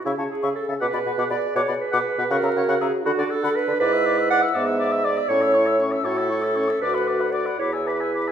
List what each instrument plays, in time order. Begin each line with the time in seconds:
0.05 bassoon C#3, clarinet E4, french horn G#4, oboe E5, flute C#6
0.18 bassoon C#3, oboe C#5, flute A5
0.30 clarinet G#4
0.43 bassoon C#3, oboe E5, flute C#6
0.55 clarinet A4
0.68 bassoon C#3, oboe A4, flute E5
0.80 bassoon B2, clarinet B4, oboe F#5, flute D6
0.93 bassoon B2, oboe D5, flute B5
1.06 bassoon B2, oboe B4, flute F#5
1.18 bassoon B2, oboe F#5, flute D6
1.30 bassoon B2, clarinet D5, oboe D5, flute B5
1.56 bassoon B2, clarinet C#5, oboe F#5, flute D6
1.68 bassoon B2, oboe D5, flute B5
1.81 clarinet B4
1.92 bassoon B2, oboe F#5, flute D6
2.18 bassoon B2, oboe B4, flute F#5
2.31 bassoon C#3, french horn F#4, clarinet A#4, oboe F#5, flute C#6
2.43 bassoon C#3, oboe E5, flute A#5
2.56 bassoon C#3, oboe C#5, flute F#5
2.68 bassoon C#3, oboe F#5, flute C#6
2.81 bassoon C#3, clarinet G#4, oboe E5, flute A#5
3.05 bassoon D3, french horn D4, clarinet F#4, oboe F#5, flute B5
3.18 bassoon D3, oboe D5, flute F#5
3.30 clarinet A4
3.43 bassoon D3, oboe F#5, flute B5
3.56 clarinet B4
3.68 bassoon D3, oboe B4, flute D5
3.80 bassoon G#2, french horn E4, clarinet B4, oboe D5, flute D6
3.93 oboe E5, flute E6
4.06 oboe D5, flute D6
4.18 oboe E5, flute E6
4.30 oboe D5, clarinet F#5, flute D6
4.41 oboe E5, flute E6
4.54 bassoon G#2, french horn B3, oboe D5, clarinet E5, flute D6
4.67 oboe E5, flute E6
4.79 oboe D5, flute D6
4.92 oboe E5, flute E6
5.04 oboe D5, clarinet D5, flute D6
5.17 oboe E5, flute E6
5.29 bassoon A2, french horn C#4, oboe C#5, clarinet C#5, flute C#6
5.41 oboe E5, flute E6
5.53 french horn E4, oboe C#5, flute C#6
5.67 oboe E5, flute E6
5.79 french horn C#4, oboe C#5, flute C#6
5.92 oboe E5, flute E6
6.04 bassoon A2, french horn F#4, clarinet A4, oboe C#5, flute C#6
6.17 oboe E5, flute E6
6.29 french horn E4, oboe C#5, flute C#6
6.42 oboe E5, flute E6
6.55 french horn C#4, oboe C#5, flute C#6
6.68 oboe E5, flute E6
6.81 bassoon D2, french horn F#4, clarinet B4, oboe D5, flute D6
6.94 oboe F#5, flute B5
7.07 oboe D5, flute D6
7.20 oboe F#5, flute B5
7.32 oboe D5, clarinet D5, flute D6
7.46 oboe F#5, flute B5
7.59 bassoon E2, french horn E4, clarinet C#5, oboe B5, flute D6
7.73 oboe G#5, flute E6
7.86 clarinet B4, oboe B5, flute D6
8.00 oboe G#5, flute E6
8.14 oboe B5, flute D6
8.27 oboe G#5, flute E6